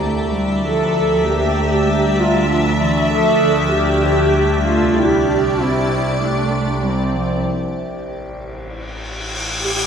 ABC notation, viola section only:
X:1
M:4/4
L:1/8
Q:1/4=97
K:Dm
V:1 name="Viola section"
z2 A2 G3 F | z2 A2 G3 F | G2 E2 D2 C2 | z6 z G |]